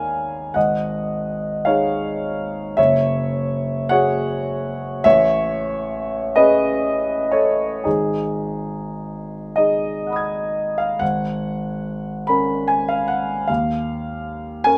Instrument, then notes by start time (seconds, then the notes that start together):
grand piano
Already playing: D#2 D#4 A#4 C#5 F5 G#5
0.54 G#1 D#5 F#5
1.65 D#4 G#4 C#5 F5
2.77 F#1 C#5 E5
3.89 F#4 G#4 C#5 F#5
5.04 A1 C#5 E5
6.36 C#4 G#4 B4 D#5
7.31 A4 C#5
7.84 G#1 D#4 G#4
9.56 D#4 G#4 D#5
10.07 F#5 B5
10.12 D#6 G#6
10.78 F5
10.99 G#1 F#5
12.27 C#4 A#4 B5
12.68 G#5
12.89 F5
13.08 F#5
13.48 D#2 F5
14.64 C#4 A#4 G#5